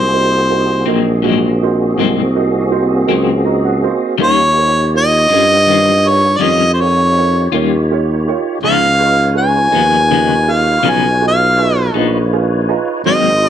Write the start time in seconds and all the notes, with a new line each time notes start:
Already playing: C2 A#3 C4 F#4 G#4 C5
0.13 D#4 F#4 A#4 C5
0.49 D#4 F#4 A#4 C5
0.86 A#1 F#3 A#3 C4 D#4 F#4 A#4 C5
1.23 G#2 F#3 A#3 C4 D#4 F#4 A#4 D#5
1.62 D#4 F#4 A#4 C5
1.98 C2 G#2 F#3 A#3 C4 D#4 F#4 A#4 C5
2.35 D#4 F#4 A#4 D#5
2.71 D#4 F#4 A#4 C5
3.06 C#2 C4 D#4 F#4 A#4 C5
3.11 F#3 A#3
3.44 D#4 F#4 A#4 D#5 A#5
3.65 F#5
3.82 D#4 F#4 A#4 C5 F5
4.18 D#2 D#3 G3 C#4 D#4 F4 G4 A#4 C#5
4.22 G4 C#5
4.57 F4 G4 A#4 C5
4.93 F4 G4 A#4 C#5
4.98 D#5
5.29 G2 G3 C#4 F4 G4 A#4 D#5
5.67 D#3 G3 C#4 F4 G4 A#4
5.71 F4 C5
6.05 F4 G4 A#4 C#5
6.37 F2 D#3 G3 C#4 F4 D5
6.42 F4 G4 A#4 C#5 D#5
6.74 C5
6.79 F4 G4 A#4 C5 C#5
7.17 F4 G4 A#4 C#5
7.52 D#2 G3 C#4 F4 G4 A#4 C#5
7.90 F4 G4 A#4 C#5
8.28 F4 G4 A#4 C#5
8.62 C#2 C#3 F3 B3 D#4 F4 G#4 B4 C#5 D#5 F5
8.99 F4 G#4 B4 D#5
9.35 F4 G#4 B4 C#5 G#5
9.72 D#2 F3 B3 D#4 F4 G#4 B4 F5
10.10 C#3 F3 B3 D#4 F4 G#4 B4 D#5
10.47 F4 G#4 B4 D#5
10.52 F5
10.82 B1 C#3 F3 B3 D#4 F4 G#4 B4 C#5
10.90 G#5
11.21 F4 G#4 B4 D#5
11.28 F5
11.58 F4 G#4 B4 D#5
11.77 D#5
11.94 A#1 F3 B3 D#4 F4 G#4 B4 D#5
12.33 F4 G#4 B4 F5
12.68 F4 G#4 B4 D#5 A#5
13.04 G#1 G#2 F#3 A#3 F#4 G#4 A#4 C5 D#5
13.08 C4
13.42 F#4 A#4 C5 D#5